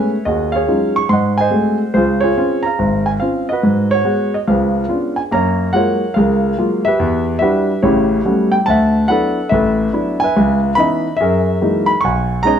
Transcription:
grand piano
Already playing: G#3 A3 B3 C#4 B4 C#5 E5
0.25 D#2 F#4 G#4 D#5
0.52 G#4 C#5 F5
0.68 F#3 G#3 C#4 D#4 F4
0.96 C#6
1.09 G#2 D#5 F#5 C6
1.38 C5 D#5 G#5
1.51 G#3 A3 C4 F#4
1.94 C#2 F4 G#4 C5
2.21 F4 G#4 C#5
2.37 C4 C#4 F4
2.63 F5 A#5
2.79 G#1
3.06 G#5
3.20 C4 C#4 F4 F5
3.49 F#4 B4 D#5
3.63 G#2
3.91 F#4 C#5
4.05 G#3 B3 F#4
4.34 D#5
4.47 C#2 F3 G#4 B4 F5
4.88 B3 C#4 D4 F4
5.16 G#5
5.31 F#2 A#3 C#5 F5 A#5
5.73 F#3 G#3 A#3 F4 A#4 C#5 F#5
6.14 C#2 G#4 A#4 F5
6.58 F#3 G#3 A#3 F4
6.85 G4 B4 E5
6.99 E2
7.39 G3 D4 E4 F#4 G4 B4 E5
7.83 A1 C#3 E4 G4 C#5
8.25 G3 A3 B3 C#4 F#4
8.52 G5
8.66 D2 E5 F#5 A5
9.08 F#3 B3 D4 E4 A4 B4 F#5
9.49 A1 E5
9.54 A4 B4
9.93 F#3 B3 D4 E4
10.20 G#5
10.24 B4 E5
10.37 C#2
10.75 E3 B3 C#4 D#4 E5 B5
10.79 D#5
11.17 F#2 E5
11.21 G#4 A#4
11.61 E3 F#3 G#3 A#3 D#4
11.86 B5
12.01 B1 C#6
12.05 F#5 G#5
12.43 G#3 B3 C#4 D#4 A#5
12.47 C#5 D#5

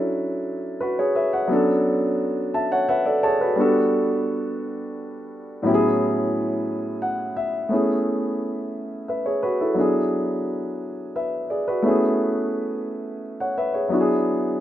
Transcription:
grand piano
Already playing: F#3 C#4 D4 E4 A4
0.81 F#4 B4
0.99 G#4 C#5
1.15 B4 E5
1.33 C#5 F#5
1.48 F#3 B3 C#4
1.52 D4 A4
2.54 E5 A5
2.72 C#5 F#5
2.89 B4 E5 F#5
3.06 A4 D5
3.23 G#4 C#5 A5
3.41 F#4 B4
3.56 G3 B3 D4
3.60 F#4 A4
5.63 A2 F#3 B3 C#4 E4
5.68 G4
5.74 G#4
7.02 F#5
7.37 E5
7.69 A3 B3 C#4 E4
7.74 G#4
9.08 B4 E5
9.26 G#4 C#5
9.43 F#4 B4
9.61 E4 A4
9.75 F#3 B3 D4
9.79 E4 G#4
11.16 B4 E5
11.50 G#4 D5
11.68 F#4 B4
11.82 A3 B3 C#4 E4
11.88 G#4
13.40 C#5 F#5
13.58 B4 E5
13.74 G#4 C#5
13.89 F#3 B3 D4 E4
13.94 F#4
14.01 G#4

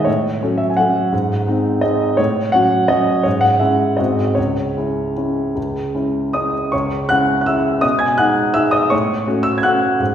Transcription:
grand piano
0.05 A2 C#5
0.42 F#3 C#4 A4
0.58 E5
0.70 G#5
0.77 F#3 C#4 A4 F#5
1.12 G#2
1.47 G#3 C4 D#4
1.81 G#3 C4 D#4 D#5
2.17 A2 C#5
2.52 F#3 C#4 F#4 F#5
2.88 F#3 C#4 F#4 D#5
3.23 G#2 C#5
3.41 F#5
3.59 G#3 C#4 E4 E5
3.97 G#2 G#3 C4 F#4 D#5
4.35 C#2 C#5
4.77 G#3 C#4 E4
5.17 G#3 C#4 E4
5.56 C#2
5.95 G#3 C#4 E4
6.33 G#3 C#4 E4 D#5 D#6
6.72 C#2 C#5 C#6
7.09 G#3 C#4 E4 F#5 F#6
7.41 F#6
7.46 G#3 C#4 E4 E5 E6
7.81 B2 D#5 D#6
7.99 G#5 G#6
8.18 G#3 D#4 F#5 F#6
8.54 G#3 D#4 E5 E6
8.71 D#5 D#6
8.90 A2 C#5 C#6
9.27 A3 C#4 F#4
9.43 E6
9.58 G#6
9.63 A3 C#4 F#4 F#5 F#6
10.00 G#2

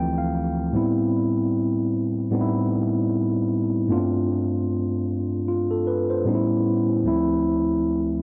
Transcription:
tine electric piano
Already playing: D2 E3 F3 A3 C4 G5
0.18 F5
0.72 A2 G3 B3 C4
0.76 E4
2.30 A2 G3 B3 C4
2.34 D#4
2.41 E4
3.88 G2 A3 B3 D4 F4
3.97 C4
5.48 F4
5.71 A4
5.87 B4
6.10 C5
6.24 A2 G3 B3 C#4
6.29 D#4
6.35 E4
7.03 D2 F3 A3 C4
7.07 E4

